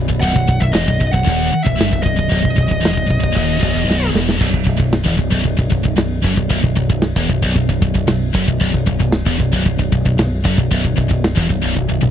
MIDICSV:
0, 0, Header, 1, 7, 480
1, 0, Start_track
1, 0, Key_signature, 5, "major"
1, 0, Tempo, 524017
1, 201, Time_signature, 4, 2, 24, 8
1, 11089, End_track
2, 0, Start_track
2, 0, Title_t, "Lead electric guitar"
2, 0, Program_c, 0, 29
2, 189, Note_on_c, 0, 78, 114
2, 551, Note_on_c, 0, 76, 95
2, 565, Note_off_c, 0, 78, 0
2, 661, Note_off_c, 0, 76, 0
2, 661, Note_on_c, 0, 75, 94
2, 1022, Note_on_c, 0, 78, 101
2, 1041, Note_off_c, 0, 75, 0
2, 1491, Note_on_c, 0, 76, 92
2, 1524, Note_off_c, 0, 78, 0
2, 1856, Note_off_c, 0, 76, 0
2, 1860, Note_on_c, 0, 75, 82
2, 3751, Note_off_c, 0, 75, 0
2, 11089, End_track
3, 0, Start_track
3, 0, Title_t, "Distorted electric guitar"
3, 0, Program_c, 1, 30
3, 74, Note_on_c, 1, 35, 76
3, 187, Note_off_c, 1, 35, 0
3, 198, Note_on_c, 1, 35, 114
3, 299, Note_off_c, 1, 35, 0
3, 310, Note_on_c, 1, 35, 83
3, 425, Note_off_c, 1, 35, 0
3, 436, Note_on_c, 1, 35, 81
3, 543, Note_off_c, 1, 35, 0
3, 554, Note_on_c, 1, 35, 68
3, 666, Note_off_c, 1, 35, 0
3, 669, Note_on_c, 1, 40, 112
3, 787, Note_off_c, 1, 40, 0
3, 804, Note_on_c, 1, 35, 73
3, 904, Note_off_c, 1, 35, 0
3, 915, Note_on_c, 1, 35, 71
3, 1023, Note_off_c, 1, 35, 0
3, 1034, Note_on_c, 1, 35, 76
3, 1137, Note_off_c, 1, 35, 0
3, 1141, Note_on_c, 1, 39, 106
3, 1382, Note_off_c, 1, 39, 0
3, 1513, Note_on_c, 1, 35, 75
3, 1618, Note_off_c, 1, 35, 0
3, 1622, Note_on_c, 1, 43, 101
3, 1743, Note_off_c, 1, 43, 0
3, 1747, Note_on_c, 1, 35, 77
3, 1842, Note_off_c, 1, 35, 0
3, 1853, Note_on_c, 1, 35, 73
3, 1966, Note_off_c, 1, 35, 0
3, 1977, Note_on_c, 1, 35, 72
3, 2087, Note_off_c, 1, 35, 0
3, 2098, Note_on_c, 1, 35, 102
3, 2205, Note_off_c, 1, 35, 0
3, 2216, Note_on_c, 1, 35, 79
3, 2333, Note_off_c, 1, 35, 0
3, 2344, Note_on_c, 1, 35, 78
3, 2445, Note_off_c, 1, 35, 0
3, 2456, Note_on_c, 1, 35, 71
3, 2571, Note_off_c, 1, 35, 0
3, 2575, Note_on_c, 1, 40, 109
3, 2680, Note_off_c, 1, 40, 0
3, 2684, Note_on_c, 1, 35, 77
3, 2797, Note_off_c, 1, 35, 0
3, 2808, Note_on_c, 1, 35, 66
3, 2916, Note_off_c, 1, 35, 0
3, 2927, Note_on_c, 1, 35, 75
3, 3038, Note_off_c, 1, 35, 0
3, 3042, Note_on_c, 1, 39, 109
3, 3281, Note_off_c, 1, 39, 0
3, 3285, Note_on_c, 1, 35, 102
3, 3404, Note_off_c, 1, 35, 0
3, 3407, Note_on_c, 1, 40, 101
3, 3521, Note_off_c, 1, 40, 0
3, 3525, Note_on_c, 1, 35, 111
3, 3762, Note_off_c, 1, 35, 0
3, 3765, Note_on_c, 1, 40, 105
3, 4004, Note_off_c, 1, 40, 0
3, 4008, Note_on_c, 1, 35, 110
3, 4120, Note_off_c, 1, 35, 0
3, 4131, Note_on_c, 1, 35, 72
3, 4246, Note_off_c, 1, 35, 0
3, 4257, Note_on_c, 1, 35, 82
3, 4364, Note_off_c, 1, 35, 0
3, 4375, Note_on_c, 1, 35, 71
3, 4578, Note_off_c, 1, 35, 0
3, 4616, Note_on_c, 1, 40, 104
3, 4732, Note_off_c, 1, 40, 0
3, 4735, Note_on_c, 1, 35, 68
3, 4847, Note_off_c, 1, 35, 0
3, 4858, Note_on_c, 1, 35, 98
3, 4963, Note_off_c, 1, 35, 0
3, 4974, Note_on_c, 1, 35, 75
3, 5090, Note_off_c, 1, 35, 0
3, 5101, Note_on_c, 1, 35, 73
3, 5210, Note_off_c, 1, 35, 0
3, 5221, Note_on_c, 1, 35, 75
3, 5334, Note_off_c, 1, 35, 0
3, 5345, Note_on_c, 1, 35, 71
3, 5454, Note_off_c, 1, 35, 0
3, 5465, Note_on_c, 1, 35, 73
3, 5663, Note_off_c, 1, 35, 0
3, 5704, Note_on_c, 1, 42, 104
3, 5823, Note_off_c, 1, 42, 0
3, 5826, Note_on_c, 1, 35, 76
3, 5939, Note_off_c, 1, 35, 0
3, 5950, Note_on_c, 1, 35, 115
3, 6052, Note_off_c, 1, 35, 0
3, 6063, Note_on_c, 1, 35, 81
3, 6177, Note_off_c, 1, 35, 0
3, 6188, Note_on_c, 1, 35, 82
3, 6307, Note_off_c, 1, 35, 0
3, 6318, Note_on_c, 1, 35, 76
3, 6511, Note_off_c, 1, 35, 0
3, 6568, Note_on_c, 1, 40, 102
3, 6676, Note_off_c, 1, 40, 0
3, 6684, Note_on_c, 1, 35, 73
3, 6790, Note_off_c, 1, 35, 0
3, 6801, Note_on_c, 1, 35, 104
3, 6909, Note_off_c, 1, 35, 0
3, 6920, Note_on_c, 1, 35, 83
3, 7034, Note_off_c, 1, 35, 0
3, 7045, Note_on_c, 1, 35, 75
3, 7150, Note_off_c, 1, 35, 0
3, 7161, Note_on_c, 1, 35, 74
3, 7262, Note_off_c, 1, 35, 0
3, 7273, Note_on_c, 1, 35, 73
3, 7384, Note_off_c, 1, 35, 0
3, 7395, Note_on_c, 1, 35, 76
3, 7590, Note_off_c, 1, 35, 0
3, 7635, Note_on_c, 1, 42, 102
3, 7751, Note_off_c, 1, 42, 0
3, 7763, Note_on_c, 1, 35, 74
3, 7864, Note_off_c, 1, 35, 0
3, 7875, Note_on_c, 1, 35, 113
3, 7974, Note_off_c, 1, 35, 0
3, 7985, Note_on_c, 1, 35, 74
3, 8107, Note_off_c, 1, 35, 0
3, 8118, Note_on_c, 1, 35, 86
3, 8227, Note_off_c, 1, 35, 0
3, 8238, Note_on_c, 1, 35, 75
3, 8432, Note_off_c, 1, 35, 0
3, 8481, Note_on_c, 1, 40, 106
3, 8591, Note_off_c, 1, 40, 0
3, 8595, Note_on_c, 1, 35, 73
3, 8711, Note_off_c, 1, 35, 0
3, 8722, Note_on_c, 1, 35, 105
3, 8826, Note_off_c, 1, 35, 0
3, 8837, Note_on_c, 1, 35, 77
3, 8952, Note_off_c, 1, 35, 0
3, 8963, Note_on_c, 1, 35, 70
3, 9076, Note_off_c, 1, 35, 0
3, 9087, Note_on_c, 1, 35, 73
3, 9199, Note_off_c, 1, 35, 0
3, 9210, Note_on_c, 1, 35, 72
3, 9317, Note_off_c, 1, 35, 0
3, 9328, Note_on_c, 1, 35, 70
3, 9518, Note_off_c, 1, 35, 0
3, 9562, Note_on_c, 1, 42, 104
3, 9676, Note_off_c, 1, 42, 0
3, 9696, Note_on_c, 1, 35, 68
3, 9796, Note_off_c, 1, 35, 0
3, 9807, Note_on_c, 1, 35, 109
3, 9910, Note_off_c, 1, 35, 0
3, 9921, Note_on_c, 1, 35, 74
3, 10029, Note_off_c, 1, 35, 0
3, 10040, Note_on_c, 1, 35, 78
3, 10143, Note_off_c, 1, 35, 0
3, 10154, Note_on_c, 1, 35, 69
3, 10352, Note_off_c, 1, 35, 0
3, 10400, Note_on_c, 1, 40, 98
3, 10515, Note_off_c, 1, 40, 0
3, 10522, Note_on_c, 1, 35, 69
3, 10631, Note_off_c, 1, 35, 0
3, 10642, Note_on_c, 1, 35, 106
3, 10757, Note_off_c, 1, 35, 0
3, 10769, Note_on_c, 1, 35, 74
3, 10879, Note_off_c, 1, 35, 0
3, 10890, Note_on_c, 1, 35, 72
3, 10988, Note_off_c, 1, 35, 0
3, 10999, Note_on_c, 1, 35, 71
3, 11089, Note_off_c, 1, 35, 0
3, 11089, End_track
4, 0, Start_track
4, 0, Title_t, "Picked electric bass"
4, 0, Program_c, 2, 34
4, 94, Note_on_c, 2, 23, 79
4, 199, Note_off_c, 2, 23, 0
4, 208, Note_on_c, 2, 23, 97
4, 316, Note_off_c, 2, 23, 0
4, 332, Note_on_c, 2, 23, 74
4, 438, Note_off_c, 2, 23, 0
4, 451, Note_on_c, 2, 23, 85
4, 557, Note_off_c, 2, 23, 0
4, 572, Note_on_c, 2, 23, 85
4, 677, Note_off_c, 2, 23, 0
4, 683, Note_on_c, 2, 28, 92
4, 793, Note_off_c, 2, 28, 0
4, 807, Note_on_c, 2, 23, 82
4, 915, Note_off_c, 2, 23, 0
4, 934, Note_on_c, 2, 23, 77
4, 1035, Note_off_c, 2, 23, 0
4, 1040, Note_on_c, 2, 23, 75
4, 1151, Note_off_c, 2, 23, 0
4, 1171, Note_on_c, 2, 27, 92
4, 1388, Note_off_c, 2, 27, 0
4, 1527, Note_on_c, 2, 23, 76
4, 1634, Note_off_c, 2, 23, 0
4, 1657, Note_on_c, 2, 31, 95
4, 1760, Note_off_c, 2, 31, 0
4, 1771, Note_on_c, 2, 23, 86
4, 1876, Note_off_c, 2, 23, 0
4, 1890, Note_on_c, 2, 23, 80
4, 1996, Note_off_c, 2, 23, 0
4, 2004, Note_on_c, 2, 23, 73
4, 2112, Note_off_c, 2, 23, 0
4, 2123, Note_on_c, 2, 23, 98
4, 2232, Note_off_c, 2, 23, 0
4, 2249, Note_on_c, 2, 23, 76
4, 2355, Note_off_c, 2, 23, 0
4, 2367, Note_on_c, 2, 23, 84
4, 2474, Note_off_c, 2, 23, 0
4, 2485, Note_on_c, 2, 23, 85
4, 2593, Note_off_c, 2, 23, 0
4, 2618, Note_on_c, 2, 28, 90
4, 2719, Note_off_c, 2, 28, 0
4, 2723, Note_on_c, 2, 23, 86
4, 2832, Note_off_c, 2, 23, 0
4, 2853, Note_on_c, 2, 23, 80
4, 2957, Note_off_c, 2, 23, 0
4, 2968, Note_on_c, 2, 23, 77
4, 3074, Note_off_c, 2, 23, 0
4, 3082, Note_on_c, 2, 27, 93
4, 3302, Note_off_c, 2, 27, 0
4, 3323, Note_on_c, 2, 23, 99
4, 3431, Note_off_c, 2, 23, 0
4, 3437, Note_on_c, 2, 28, 92
4, 3548, Note_off_c, 2, 28, 0
4, 3552, Note_on_c, 2, 23, 92
4, 3777, Note_off_c, 2, 23, 0
4, 3795, Note_on_c, 2, 28, 93
4, 4019, Note_off_c, 2, 28, 0
4, 4044, Note_on_c, 2, 23, 98
4, 4152, Note_off_c, 2, 23, 0
4, 4167, Note_on_c, 2, 23, 73
4, 4274, Note_off_c, 2, 23, 0
4, 4279, Note_on_c, 2, 23, 81
4, 4390, Note_off_c, 2, 23, 0
4, 4400, Note_on_c, 2, 23, 82
4, 4622, Note_off_c, 2, 23, 0
4, 4645, Note_on_c, 2, 28, 104
4, 4749, Note_off_c, 2, 28, 0
4, 4755, Note_on_c, 2, 23, 80
4, 4867, Note_off_c, 2, 23, 0
4, 4878, Note_on_c, 2, 23, 87
4, 4989, Note_off_c, 2, 23, 0
4, 4994, Note_on_c, 2, 23, 77
4, 5107, Note_off_c, 2, 23, 0
4, 5121, Note_on_c, 2, 23, 78
4, 5231, Note_off_c, 2, 23, 0
4, 5246, Note_on_c, 2, 23, 77
4, 5354, Note_off_c, 2, 23, 0
4, 5364, Note_on_c, 2, 23, 78
4, 5460, Note_off_c, 2, 23, 0
4, 5465, Note_on_c, 2, 23, 81
4, 5694, Note_off_c, 2, 23, 0
4, 5727, Note_on_c, 2, 30, 93
4, 5834, Note_off_c, 2, 30, 0
4, 5838, Note_on_c, 2, 23, 74
4, 5950, Note_off_c, 2, 23, 0
4, 5961, Note_on_c, 2, 23, 101
4, 6071, Note_off_c, 2, 23, 0
4, 6084, Note_on_c, 2, 23, 76
4, 6193, Note_off_c, 2, 23, 0
4, 6198, Note_on_c, 2, 23, 84
4, 6310, Note_off_c, 2, 23, 0
4, 6322, Note_on_c, 2, 23, 83
4, 6544, Note_off_c, 2, 23, 0
4, 6564, Note_on_c, 2, 28, 101
4, 6673, Note_off_c, 2, 28, 0
4, 6679, Note_on_c, 2, 23, 79
4, 6791, Note_off_c, 2, 23, 0
4, 6812, Note_on_c, 2, 23, 90
4, 6918, Note_off_c, 2, 23, 0
4, 6929, Note_on_c, 2, 23, 74
4, 7036, Note_off_c, 2, 23, 0
4, 7040, Note_on_c, 2, 23, 79
4, 7152, Note_off_c, 2, 23, 0
4, 7169, Note_on_c, 2, 23, 81
4, 7277, Note_off_c, 2, 23, 0
4, 7291, Note_on_c, 2, 23, 80
4, 7398, Note_off_c, 2, 23, 0
4, 7402, Note_on_c, 2, 23, 83
4, 7625, Note_off_c, 2, 23, 0
4, 7648, Note_on_c, 2, 30, 94
4, 7757, Note_off_c, 2, 30, 0
4, 7771, Note_on_c, 2, 23, 82
4, 7879, Note_off_c, 2, 23, 0
4, 7890, Note_on_c, 2, 23, 102
4, 7998, Note_off_c, 2, 23, 0
4, 8015, Note_on_c, 2, 23, 82
4, 8121, Note_off_c, 2, 23, 0
4, 8128, Note_on_c, 2, 23, 82
4, 8237, Note_off_c, 2, 23, 0
4, 8242, Note_on_c, 2, 23, 88
4, 8466, Note_off_c, 2, 23, 0
4, 8490, Note_on_c, 2, 28, 96
4, 8598, Note_off_c, 2, 28, 0
4, 8615, Note_on_c, 2, 23, 81
4, 8721, Note_off_c, 2, 23, 0
4, 8738, Note_on_c, 2, 23, 93
4, 8843, Note_off_c, 2, 23, 0
4, 8852, Note_on_c, 2, 23, 75
4, 8959, Note_off_c, 2, 23, 0
4, 8974, Note_on_c, 2, 23, 81
4, 9081, Note_off_c, 2, 23, 0
4, 9097, Note_on_c, 2, 23, 78
4, 9202, Note_off_c, 2, 23, 0
4, 9218, Note_on_c, 2, 23, 80
4, 9312, Note_off_c, 2, 23, 0
4, 9318, Note_on_c, 2, 23, 84
4, 9544, Note_off_c, 2, 23, 0
4, 9571, Note_on_c, 2, 30, 96
4, 9680, Note_off_c, 2, 30, 0
4, 9697, Note_on_c, 2, 23, 81
4, 9803, Note_off_c, 2, 23, 0
4, 9820, Note_on_c, 2, 23, 100
4, 9924, Note_off_c, 2, 23, 0
4, 9937, Note_on_c, 2, 23, 75
4, 10043, Note_off_c, 2, 23, 0
4, 10065, Note_on_c, 2, 23, 82
4, 10167, Note_off_c, 2, 23, 0
4, 10180, Note_on_c, 2, 23, 86
4, 10396, Note_off_c, 2, 23, 0
4, 10422, Note_on_c, 2, 28, 100
4, 10526, Note_off_c, 2, 28, 0
4, 10538, Note_on_c, 2, 23, 77
4, 10644, Note_off_c, 2, 23, 0
4, 10658, Note_on_c, 2, 23, 93
4, 10763, Note_off_c, 2, 23, 0
4, 10778, Note_on_c, 2, 23, 77
4, 10884, Note_off_c, 2, 23, 0
4, 10896, Note_on_c, 2, 23, 77
4, 11002, Note_off_c, 2, 23, 0
4, 11014, Note_on_c, 2, 23, 81
4, 11089, Note_off_c, 2, 23, 0
4, 11089, End_track
5, 0, Start_track
5, 0, Title_t, "Muted distorted electric guitar strokes"
5, 1395, Note_on_c, 9, 29, 64
5, 1486, Note_off_c, 9, 29, 0
5, 11089, End_track
6, 0, Start_track
6, 0, Title_t, "Muted picked electric bass strokes"
6, 1399, Note_on_c, 9, 29, 43
6, 1491, Note_off_c, 9, 29, 0
6, 11089, End_track
7, 0, Start_track
7, 0, Title_t, "Drums"
7, 88, Note_on_c, 9, 36, 83
7, 180, Note_off_c, 9, 36, 0
7, 208, Note_on_c, 9, 36, 101
7, 212, Note_on_c, 9, 49, 66
7, 300, Note_off_c, 9, 36, 0
7, 304, Note_off_c, 9, 49, 0
7, 328, Note_on_c, 9, 36, 88
7, 420, Note_off_c, 9, 36, 0
7, 447, Note_on_c, 9, 36, 91
7, 538, Note_off_c, 9, 36, 0
7, 567, Note_on_c, 9, 36, 87
7, 658, Note_off_c, 9, 36, 0
7, 683, Note_on_c, 9, 49, 72
7, 686, Note_on_c, 9, 38, 119
7, 775, Note_off_c, 9, 49, 0
7, 778, Note_off_c, 9, 38, 0
7, 806, Note_on_c, 9, 36, 95
7, 897, Note_off_c, 9, 36, 0
7, 925, Note_on_c, 9, 36, 90
7, 1017, Note_off_c, 9, 36, 0
7, 1044, Note_on_c, 9, 36, 90
7, 1136, Note_off_c, 9, 36, 0
7, 1166, Note_on_c, 9, 36, 95
7, 1171, Note_on_c, 9, 49, 61
7, 1258, Note_off_c, 9, 36, 0
7, 1262, Note_off_c, 9, 49, 0
7, 1525, Note_on_c, 9, 36, 89
7, 1616, Note_off_c, 9, 36, 0
7, 1652, Note_on_c, 9, 49, 70
7, 1655, Note_on_c, 9, 38, 127
7, 1744, Note_off_c, 9, 49, 0
7, 1747, Note_off_c, 9, 38, 0
7, 1766, Note_on_c, 9, 36, 99
7, 1857, Note_off_c, 9, 36, 0
7, 1885, Note_on_c, 9, 36, 84
7, 1977, Note_off_c, 9, 36, 0
7, 2004, Note_on_c, 9, 36, 82
7, 2095, Note_off_c, 9, 36, 0
7, 2121, Note_on_c, 9, 49, 58
7, 2124, Note_on_c, 9, 36, 102
7, 2212, Note_off_c, 9, 49, 0
7, 2216, Note_off_c, 9, 36, 0
7, 2244, Note_on_c, 9, 36, 85
7, 2336, Note_off_c, 9, 36, 0
7, 2364, Note_on_c, 9, 36, 88
7, 2455, Note_off_c, 9, 36, 0
7, 2484, Note_on_c, 9, 36, 89
7, 2576, Note_off_c, 9, 36, 0
7, 2610, Note_on_c, 9, 49, 61
7, 2613, Note_on_c, 9, 38, 119
7, 2702, Note_off_c, 9, 49, 0
7, 2704, Note_off_c, 9, 38, 0
7, 2724, Note_on_c, 9, 36, 95
7, 2816, Note_off_c, 9, 36, 0
7, 2843, Note_on_c, 9, 36, 89
7, 2935, Note_off_c, 9, 36, 0
7, 2963, Note_on_c, 9, 36, 85
7, 3055, Note_off_c, 9, 36, 0
7, 3082, Note_on_c, 9, 36, 93
7, 3088, Note_on_c, 9, 49, 56
7, 3174, Note_off_c, 9, 36, 0
7, 3180, Note_off_c, 9, 49, 0
7, 3324, Note_on_c, 9, 36, 114
7, 3415, Note_off_c, 9, 36, 0
7, 3578, Note_on_c, 9, 38, 72
7, 3669, Note_off_c, 9, 38, 0
7, 3805, Note_on_c, 9, 38, 98
7, 3897, Note_off_c, 9, 38, 0
7, 3927, Note_on_c, 9, 38, 86
7, 4019, Note_off_c, 9, 38, 0
7, 4039, Note_on_c, 9, 36, 111
7, 4043, Note_on_c, 9, 49, 66
7, 4043, Note_on_c, 9, 57, 123
7, 4130, Note_off_c, 9, 36, 0
7, 4135, Note_off_c, 9, 49, 0
7, 4135, Note_off_c, 9, 57, 0
7, 4157, Note_on_c, 9, 36, 83
7, 4249, Note_off_c, 9, 36, 0
7, 4275, Note_on_c, 9, 36, 98
7, 4367, Note_off_c, 9, 36, 0
7, 4395, Note_on_c, 9, 36, 87
7, 4486, Note_off_c, 9, 36, 0
7, 4511, Note_on_c, 9, 49, 67
7, 4514, Note_on_c, 9, 38, 115
7, 4603, Note_off_c, 9, 49, 0
7, 4605, Note_off_c, 9, 38, 0
7, 4634, Note_on_c, 9, 36, 107
7, 4726, Note_off_c, 9, 36, 0
7, 4753, Note_on_c, 9, 36, 86
7, 4845, Note_off_c, 9, 36, 0
7, 4874, Note_on_c, 9, 36, 85
7, 4966, Note_off_c, 9, 36, 0
7, 4990, Note_on_c, 9, 49, 58
7, 4994, Note_on_c, 9, 36, 81
7, 5081, Note_off_c, 9, 49, 0
7, 5086, Note_off_c, 9, 36, 0
7, 5118, Note_on_c, 9, 36, 84
7, 5209, Note_off_c, 9, 36, 0
7, 5240, Note_on_c, 9, 36, 97
7, 5331, Note_off_c, 9, 36, 0
7, 5361, Note_on_c, 9, 36, 82
7, 5453, Note_off_c, 9, 36, 0
7, 5475, Note_on_c, 9, 49, 68
7, 5478, Note_on_c, 9, 38, 123
7, 5567, Note_off_c, 9, 49, 0
7, 5569, Note_off_c, 9, 38, 0
7, 5720, Note_on_c, 9, 36, 111
7, 5812, Note_off_c, 9, 36, 0
7, 5839, Note_on_c, 9, 36, 88
7, 5930, Note_off_c, 9, 36, 0
7, 5951, Note_on_c, 9, 49, 63
7, 5958, Note_on_c, 9, 36, 101
7, 6043, Note_off_c, 9, 49, 0
7, 6050, Note_off_c, 9, 36, 0
7, 6081, Note_on_c, 9, 36, 87
7, 6173, Note_off_c, 9, 36, 0
7, 6199, Note_on_c, 9, 36, 92
7, 6291, Note_off_c, 9, 36, 0
7, 6318, Note_on_c, 9, 36, 91
7, 6410, Note_off_c, 9, 36, 0
7, 6428, Note_on_c, 9, 49, 63
7, 6431, Note_on_c, 9, 38, 113
7, 6519, Note_off_c, 9, 49, 0
7, 6522, Note_off_c, 9, 38, 0
7, 6560, Note_on_c, 9, 36, 110
7, 6652, Note_off_c, 9, 36, 0
7, 6681, Note_on_c, 9, 36, 93
7, 6773, Note_off_c, 9, 36, 0
7, 6801, Note_on_c, 9, 36, 87
7, 6893, Note_off_c, 9, 36, 0
7, 6917, Note_on_c, 9, 49, 56
7, 6923, Note_on_c, 9, 36, 90
7, 7008, Note_off_c, 9, 49, 0
7, 7014, Note_off_c, 9, 36, 0
7, 7044, Note_on_c, 9, 36, 85
7, 7135, Note_off_c, 9, 36, 0
7, 7164, Note_on_c, 9, 36, 94
7, 7255, Note_off_c, 9, 36, 0
7, 7285, Note_on_c, 9, 36, 88
7, 7377, Note_off_c, 9, 36, 0
7, 7398, Note_on_c, 9, 49, 68
7, 7400, Note_on_c, 9, 38, 123
7, 7489, Note_off_c, 9, 49, 0
7, 7492, Note_off_c, 9, 38, 0
7, 7646, Note_on_c, 9, 36, 118
7, 7738, Note_off_c, 9, 36, 0
7, 7769, Note_on_c, 9, 36, 91
7, 7860, Note_off_c, 9, 36, 0
7, 7883, Note_on_c, 9, 49, 65
7, 7888, Note_on_c, 9, 36, 103
7, 7975, Note_off_c, 9, 49, 0
7, 7979, Note_off_c, 9, 36, 0
7, 8008, Note_on_c, 9, 36, 84
7, 8099, Note_off_c, 9, 36, 0
7, 8126, Note_on_c, 9, 36, 90
7, 8218, Note_off_c, 9, 36, 0
7, 8246, Note_on_c, 9, 36, 89
7, 8338, Note_off_c, 9, 36, 0
7, 8355, Note_on_c, 9, 49, 67
7, 8357, Note_on_c, 9, 38, 117
7, 8446, Note_off_c, 9, 49, 0
7, 8449, Note_off_c, 9, 38, 0
7, 8486, Note_on_c, 9, 36, 118
7, 8578, Note_off_c, 9, 36, 0
7, 8609, Note_on_c, 9, 36, 86
7, 8701, Note_off_c, 9, 36, 0
7, 8729, Note_on_c, 9, 36, 87
7, 8821, Note_off_c, 9, 36, 0
7, 8843, Note_on_c, 9, 49, 59
7, 8848, Note_on_c, 9, 36, 85
7, 8935, Note_off_c, 9, 49, 0
7, 8940, Note_off_c, 9, 36, 0
7, 8970, Note_on_c, 9, 36, 87
7, 9061, Note_off_c, 9, 36, 0
7, 9090, Note_on_c, 9, 36, 91
7, 9182, Note_off_c, 9, 36, 0
7, 9214, Note_on_c, 9, 36, 83
7, 9305, Note_off_c, 9, 36, 0
7, 9332, Note_on_c, 9, 49, 71
7, 9335, Note_on_c, 9, 38, 116
7, 9424, Note_off_c, 9, 49, 0
7, 9427, Note_off_c, 9, 38, 0
7, 9573, Note_on_c, 9, 36, 114
7, 9665, Note_off_c, 9, 36, 0
7, 9693, Note_on_c, 9, 36, 88
7, 9784, Note_off_c, 9, 36, 0
7, 9814, Note_on_c, 9, 36, 97
7, 9814, Note_on_c, 9, 49, 63
7, 9905, Note_off_c, 9, 49, 0
7, 9906, Note_off_c, 9, 36, 0
7, 9936, Note_on_c, 9, 36, 83
7, 10027, Note_off_c, 9, 36, 0
7, 10056, Note_on_c, 9, 36, 91
7, 10148, Note_off_c, 9, 36, 0
7, 10175, Note_on_c, 9, 36, 96
7, 10267, Note_off_c, 9, 36, 0
7, 10296, Note_on_c, 9, 49, 65
7, 10299, Note_on_c, 9, 38, 114
7, 10388, Note_off_c, 9, 49, 0
7, 10390, Note_off_c, 9, 38, 0
7, 10418, Note_on_c, 9, 36, 108
7, 10510, Note_off_c, 9, 36, 0
7, 10536, Note_on_c, 9, 36, 90
7, 10628, Note_off_c, 9, 36, 0
7, 10776, Note_on_c, 9, 36, 62
7, 10868, Note_off_c, 9, 36, 0
7, 11018, Note_on_c, 9, 47, 81
7, 11089, Note_off_c, 9, 47, 0
7, 11089, End_track
0, 0, End_of_file